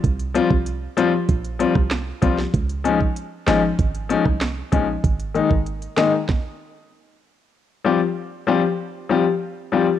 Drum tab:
HH |xxx-x-x-xxx-x-x-|xxx-x-x-xxx-x-x-|xxx-xxx---------|----------------|
CP |------------x---|------x-----x---|------x---------|----------------|
SD |-----------ro--o|------o----ro---|------o-o-------|----------------|
BD |o--o----o--o--o-|o--o----o--o--o-|o--o----o-------|----------------|